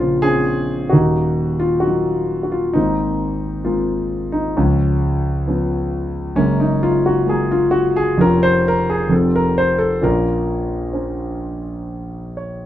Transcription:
Already playing: A#1 A#2 F3 C#4
0.00 C#3 A#3 F4 C5
0.22 C4 C#4 G#4
0.89 D#1 D#2 A#3 D#4 F#4
1.60 F4
1.80 F#3 A#3 F#4
1.84 D#4
2.43 F#4
2.52 F4
2.73 G#1 G#2 A#3 C4 D#4
3.65 G#3 A#3 C4 F4
4.32 D#4
4.57 C#2 F3 G#3 C#4
5.48 F3 B3 C#4
6.36 F#1 F#2 G#3 A#3 C#4
6.60 D#4
6.83 F4
7.06 F#4
7.26 F#3 G#3 A#3 G#4
7.51 F4
7.71 F#4
7.96 G#4
8.17 F1 F2 C#4 F4 A#4
8.43 C5
8.68 A#4
8.90 G#4
9.09 F1 F2 C4 F4 A4
9.36 A#4
9.58 C5
9.79 A4
10.02 A#1 A#2 C#4 F4 A#4
10.93 A#3 C#4 C5
12.37 C#5

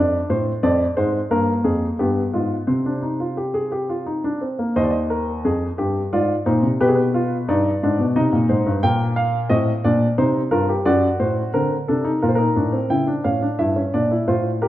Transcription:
Already playing: F2 D4 D5
0.30 A2 C5
0.63 F2 C4 D5
0.97 G#2 G#3 C5
1.31 G2 A#3 A#4
1.64 F2 G#4
1.99 G2 B3 G4
2.33 G#2 F4
2.67 C3 C4 C5
2.86 D4
3.02 D#4
3.20 F4
3.37 G4
3.54 G#4
3.72 G4
3.89 F4
4.06 D#4
4.24 D4
4.41 C4
4.59 A#3
4.76 D#2 C5 D#5
4.83 D5
4.90 D#5
5.10 A#4
5.45 F2 G#4
5.78 G2 G4
6.13 G#2 F4 D5
6.46 A#2 D#4 C5
6.63 C3
6.80 B2 G4 B4
6.88 G#4
6.95 B4
7.14 F4
7.49 G2 D#4 D5
7.83 G#2 D4
7.99 B2
8.16 C3 D#4 D#5
8.33 A#2
8.49 G#2 C5
8.66 G2
8.83 A#2 A#3 G5
9.16 F5
9.49 A2 C4 D#5
9.84 A#2 D4 D5
10.18 C3 D#4 C5
10.51 G2 F4 A#4
10.69 G4
10.86 F#2 F#4 D5
11.20 A2 C5
11.54 D3 C4 A#4
11.88 C3 D4 A4
12.04 D#4
12.22 A#2 F4 A#4
12.29 C5
12.35 D#4 A#4
12.56 A2 D4
12.72 C4
12.90 C#3 E4 G5
13.07 D4
13.24 A2 C#4 F5
13.42 D4
13.59 G2 E4 E5
13.76 C#4
13.94 A#2 D4 D5
14.11 E4
14.28 A2 F4 C5
14.62 G4 A#4

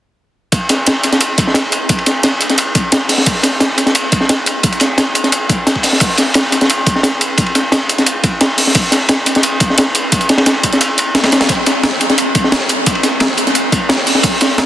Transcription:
0.52 kick, closed hi-hat, ride
0.69 snare, closed hi-hat, ride
0.87 snare, closed hi-hat, ride
1.03 snare, closed hi-hat, ride
1.12 snare, closed hi-hat
1.21 closed hi-hat, ride
1.38 kick, closed hi-hat, ride
1.47 snare
1.54 snare, closed hi-hat, ride
1.72 closed hi-hat, ride
1.89 kick, closed hi-hat, ride
1.99 ride
2.06 snare, closed hi-hat, ride
2.23 snare, closed hi-hat, ride
2.41 closed hi-hat, ride
2.50 snare, closed hi-hat
2.58 closed hi-hat, ride
2.75 kick, closed hi-hat, ride
2.92 snare, closed hi-hat, ride
3.09 snare, closed hi-hat, open hi-hat
3.18 snare
3.26 kick, closed hi-hat, ride
3.43 snare, closed hi-hat, ride
3.60 snare, closed hi-hat, ride
3.78 snare, closed hi-hat, ride
3.86 snare, closed hi-hat
3.95 closed hi-hat, ride
4.12 kick, closed hi-hat, ride
4.21 snare
4.29 snare, closed hi-hat, ride
4.46 closed hi-hat, ride
4.63 kick, closed hi-hat, ride
4.72 closed hi-hat, ride
4.80 snare, closed hi-hat, ride
4.98 snare, closed hi-hat, ride
5.15 closed hi-hat, ride
5.24 snare, closed hi-hat
5.32 closed hi-hat, ride
5.49 kick, closed hi-hat, ride
5.67 snare, closed hi-hat, ride
5.76 kick
5.83 snare, closed hi-hat, open hi-hat
5.93 snare
6.00 kick, closed hi-hat, ride
6.17 snare, closed hi-hat, ride
6.34 snare, closed hi-hat, ride
6.52 snare, closed hi-hat, ride
6.61 snare, closed hi-hat
6.70 closed hi-hat, ride
6.86 kick, closed hi-hat, ride
6.96 snare
7.03 snare, closed hi-hat, ride
7.21 closed hi-hat, ride
7.38 kick, closed hi-hat, ride
7.46 ride
7.55 snare, closed hi-hat, ride
7.72 snare, closed hi-hat, ride
7.89 closed hi-hat, ride
7.98 snare, closed hi-hat
8.06 closed hi-hat, ride
8.24 kick, closed hi-hat, ride
8.41 snare, closed hi-hat, ride
8.58 snare, closed hi-hat, open hi-hat
8.67 snare
8.75 kick, closed hi-hat, ride
8.92 snare, closed hi-hat, ride
9.09 snare, closed hi-hat, ride
9.26 snare, closed hi-hat, ride
9.35 snare, closed hi-hat
9.43 closed hi-hat, ride
9.60 kick, closed hi-hat, ride
9.70 snare
9.78 snare, closed hi-hat, ride
9.95 closed hi-hat, ride
10.12 kick, closed hi-hat, ride
10.21 closed hi-hat, ride
10.29 snare, closed hi-hat, ride
10.38 snare, ride
10.46 snare, closed hi-hat, ride
10.63 kick, closed hi-hat, ride
10.73 snare, closed hi-hat
10.81 closed hi-hat, ride
10.98 closed hi-hat, ride
11.15 snare, closed hi-hat, ride
11.24 snare, ride
11.32 snare, closed hi-hat, ride
11.41 snare, closed hi-hat, ride
11.49 kick, closed hi-hat, ride
11.66 snare, closed hi-hat, ride
11.83 snare, closed hi-hat, ride
12.01 snare, closed hi-hat, ride
12.10 snare, closed hi-hat
12.18 closed hi-hat, ride
12.35 kick, closed hi-hat, ride
12.44 snare
12.52 snare, closed hi-hat, ride
12.69 closed hi-hat, ride
12.86 kick, closed hi-hat, ride
12.95 ride
13.03 snare, closed hi-hat, ride
13.20 snare, closed hi-hat, ride
13.37 closed hi-hat, ride
13.47 snare, closed hi-hat
13.55 closed hi-hat, ride
13.72 kick, closed hi-hat, ride
13.89 snare, closed hi-hat, ride
14.07 snare, closed hi-hat, open hi-hat
14.15 snare
14.23 kick, closed hi-hat, ride
14.41 snare, closed hi-hat, ride
14.58 snare, closed hi-hat, ride

